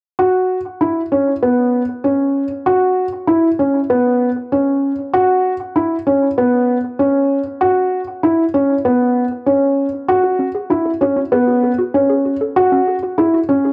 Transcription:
0.19 felt piano F#4
0.81 felt piano E4
1.12 felt piano C#4
1.43 felt piano B3
2.04 felt piano C#4
2.66 felt piano F#4
3.27 felt piano E4
3.59 felt piano C#4
3.90 felt piano B3
4.52 felt piano C#4
5.13 felt piano F#4
5.76 felt piano E4
6.07 felt piano C#4
6.38 felt piano B3
6.99 felt piano C#4
7.61 felt piano F#4
8.23 felt piano E4
8.54 felt piano C#4
8.85 felt piano B3
9.46 felt piano C#4
10.08 felt piano F#4, synth arpeggio sound A4
10.23 synth arpeggio sound F#4
10.39 synth arpeggio sound C#4
10.55 synth arpeggio sound G#4
10.70 felt piano E4, synth arpeggio sound F#4
10.86 synth arpeggio sound A4
11.01 felt piano C#4, synth arpeggio sound F#4
11.16 synth arpeggio sound C#4
11.32 felt piano B3, synth arpeggio sound G#4
11.48 synth arpeggio sound F#4
11.63 synth arpeggio sound A4
11.79 synth arpeggio sound F#4
11.94 felt piano C#4, synth arpeggio sound C#4
12.10 synth arpeggio sound G#4
12.26 synth arpeggio sound F#4
12.41 synth arpeggio sound A4
12.56 felt piano F#4, synth arpeggio sound F#4
12.72 synth arpeggio sound C#4
12.87 synth arpeggio sound G#4
13.03 synth arpeggio sound F#4
13.18 felt piano E4, synth arpeggio sound G#4
13.34 synth arpeggio sound F#4
13.49 felt piano C#4, synth arpeggio sound C#4
13.65 synth arpeggio sound G#4

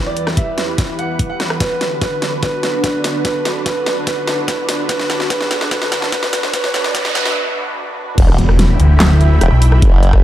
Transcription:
Already playing: analog synth pad E3 E4 G4 B4
0.06 grand piano D5
0.17 closed hi-hat
0.27 cross-stick, snare
0.37 grand piano E5, kick, closed hi-hat
0.58 snare, closed hi-hat
0.78 kick, snare, closed hi-hat
0.99 grand piano F#5, closed hi-hat
1.19 kick, closed hi-hat
1.30 grand piano F#5
1.40 cross-stick, snare, closed hi-hat
1.50 cross-stick
1.60 analog synth pad D3 D4 F#4, grand piano B4, kick, snare, closed hi-hat, riser
1.81 snare, closed hi-hat
2.02 grand piano B4, kick, snare, closed hi-hat
2.22 snare, closed hi-hat
2.43 grand piano B4, kick, snare, closed hi-hat
2.63 snare, closed hi-hat
2.84 grand piano B4, kick, snare, closed hi-hat
3.04 snare, open hi-hat
3.25 grand piano B4, kick, snare, closed hi-hat
3.45 snare, closed hi-hat
3.66 grand piano B4, kick, snare, closed hi-hat
3.86 snare, closed hi-hat
4.07 grand piano B4, kick, snare, closed hi-hat
4.28 snare, closed hi-hat
4.48 grand piano B4, kick, snare, closed hi-hat
4.69 snare, open hi-hat
4.89 grand piano B4, kick, snare, closed hi-hat
4.99 snare
5.10 snare, closed hi-hat
5.20 snare
5.30 grand piano B4, kick, snare, closed hi-hat
5.41 snare
5.51 snare, closed hi-hat
5.61 snare
5.71 grand piano B4, kick, snare, closed hi-hat
5.82 snare
5.92 snare, closed hi-hat
6.02 snare
6.12 grand piano B4, kick, snare, closed hi-hat
6.23 snare
6.33 snare, open hi-hat
6.43 snare
6.54 grand piano B4, kick, snare, closed hi-hat, noise sweep
6.64 snare
6.74 grand piano B4, snare, closed hi-hat
6.84 snare
6.95 grand piano B4, kick, snare, closed hi-hat
7.05 snare
7.15 grand piano B4, snare, closed hi-hat
7.25 snare
8.18 wobble bass E1, analog synth pad E4 E5 G5 B5, kick, closed hi-hat, crash, impact
8.28 cross-stick
8.38 detuned saw bass E1, closed hi-hat
8.49 cross-stick
8.59 snare, closed hi-hat
8.80 detuned saw bass D2, closed hi-hat
9.00 detuned saw bass D2, snare, clap, closed hi-hat
9.21 closed hi-hat
9.41 wobble bass E1, cross-stick, closed hi-hat
9.52 detuned saw bass B1
9.62 open hi-hat
9.72 cross-stick
9.82 wobble bass F#1, kick, closed hi-hat
10.03 closed hi-hat
10.13 kick, cross-stick

